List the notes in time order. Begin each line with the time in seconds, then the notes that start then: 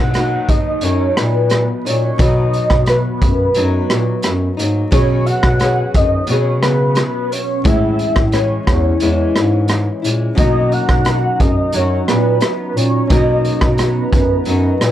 Already playing: B2 F#3 A#3 D#4 F#5
0.14 B2 F#3 A#3 D#4, cross-stick, closed hi-hat
0.49 D#5, kick, closed hi-hat
0.81 F#2 F#3 C#5, closed hi-hat
0.85 D#4
1.16 A#2 B4, cross-stick, closed hi-hat
1.50 cross-stick, closed hi-hat
1.84 A#2 A#3 D#4 C#5, closed hi-hat
1.89 F#3
2.18 B2 F#3 D#5, kick, closed hi-hat
2.24 D#4
2.53 closed hi-hat
2.70 B2, kick, cross-stick
2.86 B4, cross-stick, closed hi-hat
3.21 F#2, kick, closed hi-hat
3.54 F#2 F#3 D#4, closed hi-hat
3.89 A#2, cross-stick, closed hi-hat
4.22 F#2, cross-stick, closed hi-hat
4.57 G#2 F#3 A#3 D#4, closed hi-hat
4.91 B2 F#3 B3 C#4 G#4 C#5, kick, closed hi-hat
5.26 F#5, closed hi-hat
5.43 B2, kick, cross-stick
5.59 F#3 B3 C#4 G#4, cross-stick, closed hi-hat
5.94 F#2 D#5, kick, closed hi-hat
6.27 B2 F#3 B3 C#5, closed hi-hat
6.31 C#4 G#4
6.62 C#3 B4, cross-stick, closed hi-hat
6.95 cross-stick, closed hi-hat
7.32 C#5, closed hi-hat
7.64 A2 E3 G#3 C#4 E4 E5, kick, closed hi-hat
7.99 closed hi-hat
8.16 A2, kick, cross-stick
8.32 E3 G#3 C#4 E4 C#5, cross-stick, closed hi-hat
8.67 E2, kick, cross-stick, closed hi-hat
9.00 E2 E3 G#3 C#4 E4, closed hi-hat
9.35 G#2, cross-stick, closed hi-hat
9.68 cross-stick, closed hi-hat
10.02 A#2 G#3 C#4 E4, closed hi-hat
10.35 B2 F#3 A#3 C#4 D#4 F#4 D#5, kick, closed hi-hat
10.39 D#4 F#4 A#5
10.72 F#5, closed hi-hat
10.89 B2, kick, cross-stick
11.05 cross-stick, closed hi-hat
11.40 F#2 D#5, kick, closed hi-hat
11.73 F#2 F#3 D#4 C#5, closed hi-hat
11.77 F#4
12.08 A#2 B4, cross-stick, closed hi-hat
12.41 cross-stick, closed hi-hat
12.76 A#2 C#5, closed hi-hat
13.08 B2 F#3 A#3 C#4 D#4 F#4 D#5, kick, closed hi-hat
13.12 F#4 A#5
13.45 closed hi-hat
13.61 B2, kick, cross-stick
13.77 F#3 D#4 F#4 B4, cross-stick, closed hi-hat
14.12 F#2, kick, closed hi-hat
14.45 F#2 F#3 D#4, closed hi-hat
14.50 F#4
14.81 A#2, cross-stick, closed hi-hat